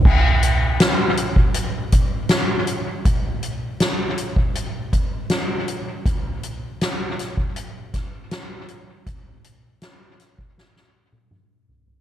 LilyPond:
\new DrumStaff \with { instrumentName = "Drums" } \drummode { \time 4/4 \tempo 4 = 80 <cymc bd>8 hh8 <hh sn>8 hh16 bd16 hh8 <hh bd>8 <hh sn>8 hh8 | <hh bd>8 hh8 <hh sn>8 hh16 bd16 hh8 <hh bd>8 <hh sn>8 hh8 | <hh bd>8 hh8 <hh sn>8 <hh sn>16 bd16 hh8 <hh bd sn>8 <hh sn>8 hh8 | <hh bd>8 hh8 <hh sn>8 <hh sn>16 bd16 sn16 sn8 tommh16 toml8 tomfh16 tomfh16 | }